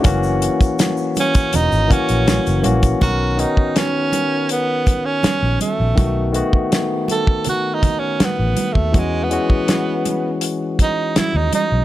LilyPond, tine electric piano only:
\new Staff \with { instrumentName = "Tine electric piano" } { \time 4/4 \key b \major \tempo 4 = 81 <e ais cis' fis'>4. r4 <e ais cis' fis'>4 <e ais cis' fis'>8 | <dis b cis' ais'>8 <dis b cis' fis'>4. r2 | <dis a b fis'>8 <dis a b fis'>4. r2 | <e gis cis' fis'>8 <e gis cis' fis'>4. r2 | }